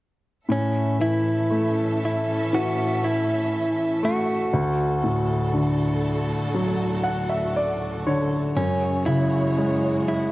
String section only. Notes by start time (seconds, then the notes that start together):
0.47 A2 E3 C#4 A4 E5
4.53 D2 D3 A3 F#4 A4
8.55 F#2 C#3 G#3 F#4 C#5